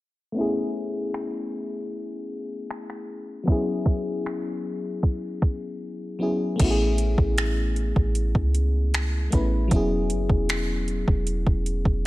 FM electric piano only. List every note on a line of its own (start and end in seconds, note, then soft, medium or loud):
0.32 3.42 A3 medium
0.32 3.43 B3 medium
0.36 3.44 C#4 medium
0.36 3.45 E4 medium
0.41 3.46 G#4 medium
3.44 6.14 F#3 medium
3.44 6.15 B3 medium
3.48 6.17 C#4 medium
3.48 6.18 E4 medium
3.52 6.19 G#4 medium
6.19 6.59 F#3 medium
6.19 6.57 B3 soft
6.19 6.59 C#4 soft
6.19 6.60 E4 soft
6.23 6.61 G#4 medium
6.56 9.26 A3 medium
6.56 9.27 B3 medium
6.60 9.29 C#4 medium
6.60 9.30 E4 medium
6.64 6.68 F#4 medium
6.71 9.34 G#4 medium
9.30 9.70 A3 medium
9.30 9.69 B3 soft
9.30 9.71 C#4 soft
9.30 9.72 E4 soft
9.35 9.72 B4 medium
9.68 12.07 F#3 medium
9.68 12.07 B3 medium
9.72 12.07 C#4 medium
9.72 12.07 E4 medium
9.76 12.07 G#4 medium